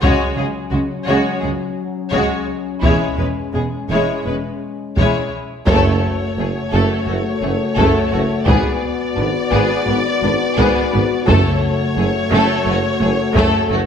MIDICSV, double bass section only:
0, 0, Header, 1, 2, 480
1, 0, Start_track
1, 0, Key_signature, 3, "minor"
1, 0, Tempo, 698487
1, 16, Time_signature, 4, 2, 24, 8
1, 1457, Tempo, 712589
1, 3857, Tempo, 696864
1, 9490, End_track
2, 0, Start_track
2, 0, Title_t, "Double bass section"
2, 0, Program_c, 0, 48
2, 23, Note_on_c, 0, 37, 53
2, 78, Note_off_c, 0, 37, 0
2, 255, Note_on_c, 0, 37, 39
2, 310, Note_off_c, 0, 37, 0
2, 494, Note_on_c, 0, 37, 37
2, 549, Note_off_c, 0, 37, 0
2, 739, Note_on_c, 0, 37, 52
2, 794, Note_off_c, 0, 37, 0
2, 979, Note_on_c, 0, 37, 37
2, 1034, Note_off_c, 0, 37, 0
2, 1455, Note_on_c, 0, 37, 47
2, 1509, Note_off_c, 0, 37, 0
2, 1935, Note_on_c, 0, 28, 43
2, 1989, Note_off_c, 0, 28, 0
2, 2175, Note_on_c, 0, 28, 31
2, 2229, Note_off_c, 0, 28, 0
2, 2418, Note_on_c, 0, 28, 31
2, 2472, Note_off_c, 0, 28, 0
2, 2660, Note_on_c, 0, 28, 45
2, 2714, Note_off_c, 0, 28, 0
2, 2900, Note_on_c, 0, 28, 31
2, 2954, Note_off_c, 0, 28, 0
2, 3376, Note_on_c, 0, 28, 45
2, 3430, Note_off_c, 0, 28, 0
2, 3853, Note_on_c, 0, 30, 70
2, 4078, Note_off_c, 0, 30, 0
2, 4340, Note_on_c, 0, 30, 40
2, 4395, Note_off_c, 0, 30, 0
2, 4582, Note_on_c, 0, 30, 58
2, 4637, Note_off_c, 0, 30, 0
2, 4820, Note_on_c, 0, 30, 43
2, 4875, Note_off_c, 0, 30, 0
2, 5056, Note_on_c, 0, 30, 42
2, 5111, Note_off_c, 0, 30, 0
2, 5296, Note_on_c, 0, 30, 58
2, 5351, Note_off_c, 0, 30, 0
2, 5546, Note_on_c, 0, 30, 41
2, 5602, Note_off_c, 0, 30, 0
2, 5778, Note_on_c, 0, 32, 55
2, 5833, Note_off_c, 0, 32, 0
2, 6266, Note_on_c, 0, 32, 42
2, 6321, Note_off_c, 0, 32, 0
2, 6503, Note_on_c, 0, 32, 59
2, 6558, Note_off_c, 0, 32, 0
2, 6744, Note_on_c, 0, 32, 44
2, 6799, Note_off_c, 0, 32, 0
2, 6986, Note_on_c, 0, 32, 42
2, 7041, Note_off_c, 0, 32, 0
2, 7228, Note_on_c, 0, 32, 60
2, 7283, Note_off_c, 0, 32, 0
2, 7477, Note_on_c, 0, 32, 45
2, 7532, Note_off_c, 0, 32, 0
2, 7708, Note_on_c, 0, 30, 60
2, 7763, Note_off_c, 0, 30, 0
2, 8188, Note_on_c, 0, 30, 48
2, 8243, Note_off_c, 0, 30, 0
2, 8429, Note_on_c, 0, 30, 63
2, 8484, Note_off_c, 0, 30, 0
2, 8665, Note_on_c, 0, 30, 50
2, 8720, Note_off_c, 0, 30, 0
2, 8905, Note_on_c, 0, 30, 48
2, 8960, Note_off_c, 0, 30, 0
2, 9141, Note_on_c, 0, 30, 71
2, 9196, Note_off_c, 0, 30, 0
2, 9376, Note_on_c, 0, 30, 49
2, 9431, Note_off_c, 0, 30, 0
2, 9490, End_track
0, 0, End_of_file